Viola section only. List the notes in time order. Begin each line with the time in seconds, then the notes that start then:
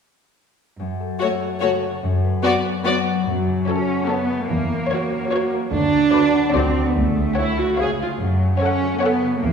1.21 A3
1.62 A3
2.44 B3
2.85 B3
3.68 F#4
4.09 F#4
4.92 F#4
5.33 F#4
6.14 F#4
6.55 F#4
7.38 E4
7.60 F#4
7.80 G#4
8.01 F4
8.62 A4
9.03 A4